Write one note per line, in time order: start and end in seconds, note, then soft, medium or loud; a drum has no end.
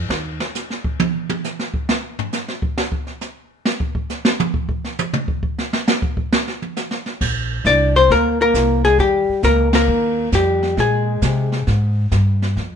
0.09 0.39 D#2 medium
0.09 snare loud
0.40 snare medium
0.55 snare soft
0.55 hi-hat pedal medium
0.70 snare soft
0.84 kick medium
1.00 high tom loud
1.29 high tom medium
1.44 snare soft
1.44 hi-hat pedal medium
1.59 snare medium
1.74 kick medium
1.89 snare medium
2.19 floor tom loud
2.33 snare medium
2.33 hi-hat pedal medium
2.48 snare medium
2.62 kick medium
2.78 snare loud
2.92 kick medium
3.07 snare soft
3.21 snare soft
3.21 hi-hat pedal medium
3.65 snare loud
3.80 kick medium
3.95 kick medium
4.10 snare soft
4.10 hi-hat pedal medium
4.25 snare loud
4.40 high tom loud
4.54 kick medium
4.69 kick medium
4.85 snare soft
4.99 hi-hat pedal medium
4.99 high tom loud
5.13 mid tom loud
5.28 kick medium
5.43 kick medium
5.58 snare medium
5.73 snare loud
5.87 snare loud
5.87 hi-hat pedal medium
6.02 kick medium
6.17 kick medium
6.32 snare loud
6.48 snare medium
6.62 high tom soft
6.76 snare medium
6.76 hi-hat pedal medium
6.91 snare medium
7.06 snare soft
7.21 7.64 A#1 medium
7.21 brush sweep soft
7.21 kick medium
7.21 snare soft
7.21 crash medium
7.65 8.08 C2 loud
7.65 7.93 D4 medium
7.65 7.94 D5 medium
7.65 snare medium
7.65 hi-hat pedal medium
7.95 8.09 C4 medium
7.95 8.11 C5 medium
7.95 snare soft
8.09 8.53 D2 medium
8.09 8.39 A#3 medium
8.09 8.39 A#4 medium
8.09 brush sweep medium
8.09 snare soft
8.42 8.82 A#3 medium
8.42 8.84 A#4 medium
8.54 8.97 C2 medium
8.54 snare medium
8.54 hi-hat pedal medium
8.84 8.98 G#3 medium
8.84 9.00 G#4 medium
8.84 snare soft
8.98 9.27 D#2 medium
8.98 9.41 G3 medium
8.98 9.44 G4 medium
8.98 brush sweep soft
8.98 snare soft
9.29 muted upright bass stroke soft
9.43 9.86 C#2 medium
9.43 9.72 A#3 medium
9.43 9.72 A#4 loud
9.43 snare medium
9.43 hi-hat pedal medium
9.72 10.28 A#3 medium
9.72 10.30 A#4 medium
9.72 snare medium
9.72 ride medium
9.88 10.31 D#2 medium
9.88 brush sweep soft
10.32 10.76 F2 medium
10.32 10.74 G3 medium
10.32 10.80 G4 medium
10.32 snare medium
10.32 hi-hat pedal medium
10.63 snare soft
10.77 11.21 A#2 medium
10.77 11.62 G#3 medium
10.77 11.64 G#4 medium
10.77 brush sweep soft
10.77 snare soft
11.22 11.65 C3 medium
11.22 snare medium
11.22 hi-hat pedal medium
11.52 snare soft
11.67 12.10 G#2 medium
11.67 brush sweep soft
11.67 snare soft
12.11 12.55 G2 medium
12.11 snare medium
12.11 hi-hat pedal medium
12.42 snare soft
12.56 12.76 F2 medium
12.56 brush sweep soft
12.56 snare soft